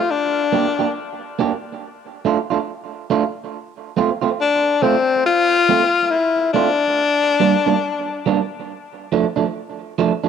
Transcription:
Already playing: F4
0.11 D4
0.53 A#3 D4 G4
0.79 A#3 D4 G4
1.39 A#3 D4 G4
2.25 A3 D4 F4
2.50 A3 D4 F4
3.10 A3 D4 F4
3.97 A3 C4 F4
4.21 A3 C4 F4
4.41 D4
4.82 A3 C4 F4
5.26 F4
5.69 A3 C4 F4
6.11 E4
6.54 A3 C4 D4 F4
7.40 G3 A#3 D4
7.66 G3 A#3 D4
8.26 G3 A#3 D4
9.12 F3 A3 D4
9.36 F3 A3 D4
9.98 F3 A3 D4
10.24 F3 A3 D4

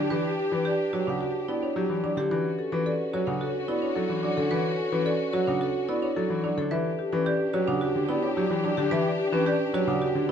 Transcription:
Already playing: D3 D4 G4
0.10 E3 B4
0.39 G4
0.52 E3 B4
0.65 G4 D5
0.93 F#3 F#4 C#5
1.07 C#3 D4 F#5
1.21 F#4 G4
1.48 B3 E4 D5
1.63 D4 C#5
1.76 F#3 G4
1.89 E3
2.03 F#3 D4 D5
2.17 D3 G4
2.31 E3 C#4 F#4 B4
2.59 A4
2.72 E3 C#4 B4
2.86 A4 D5
3.13 F#3 F#4 C#5
3.27 C#3 D4 F#5
3.41 F#4 A4
3.68 B3 E4 D5
3.82 D4 C#5
3.96 F#3 A4
4.09 E3
4.23 F#3 D4 D5
4.37 D3 A4
4.51 E3 B4
4.78 A4
4.92 E3 C#4 B4
5.05 A4 D5
5.33 F#3 F#4 C#5
5.47 C#3 D4 F#5
5.61 F#4 A4
5.89 B3 E4 D5
6.02 D4 C#5
6.16 F#3 A4
6.30 E3
6.44 F#3 D4 D5
6.57 D3 A4
6.71 E3 D4 G4 B4 E5
6.99 G4
7.12 E3 C#4 B4
7.26 G4 D5
7.53 F#3 F#4 C#5
7.67 C#3 D4 F#5
7.81 F#4 G4
7.95 D3
8.09 B3 E4 D5
8.23 D4 C#5
8.37 F#3 G4
8.50 E3
8.64 F#3 D4 D5
8.77 D3 G4
8.91 E3 B4 E5
9.20 G4
9.32 E3 C#4 B4
9.46 G4 D5
9.74 F#3 F#4 C#5
9.87 C#3 D4 F#5
10.02 F#4 G4
10.15 D3
10.29 B3

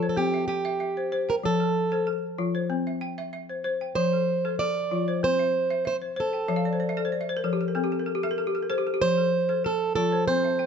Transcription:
Already playing: F3 F4
0.03 C5
0.09 A4
0.17 C4 G4
0.34 E5
0.48 G4 G5
0.65 E5
0.80 E5
0.97 C5
1.12 C5
1.29 A#4 G5
1.43 F3 A4
1.60 A4
1.92 A4 C5
2.07 A4
2.38 F3 F4
2.55 C5
2.70 C4
2.87 E5
3.01 G5
3.18 E5
3.33 E5
3.49 C5
3.64 C5
3.81 G5
3.95 F3 C5
4.13 A4
4.45 A4 C5
4.59 A4 D5
4.91 F3 F4
5.08 C5
5.23 C4 C5
5.39 E5
5.70 E5
5.85 C5 E5
6.02 C5
6.16 A4 C5
6.33 G5
6.48 F3 E5
6.56 F5
6.65 D5
6.73 C5
6.80 D5
6.89 E5
6.97 A4 D5
7.05 C5
7.12 D5
7.21 E5
7.29 C5
7.37 A#4
7.44 F3 A4
7.53 G4
7.61 A4
7.68 A#4
7.75 C4 A4
7.84 G4
7.92 A4
7.99 A#4
8.06 A4
8.15 G4
8.23 A4 E5
8.31 A#4
8.38 A4
8.47 G4
8.55 A4
8.62 A#4
8.70 A4 C5
8.78 G4
8.87 A4
8.94 G4
9.01 F3 C5
9.18 A4
9.49 A4 C5
9.64 A4
9.95 F3 F4 A4
10.12 C5
10.28 C4 C5
10.44 E5
10.59 G5

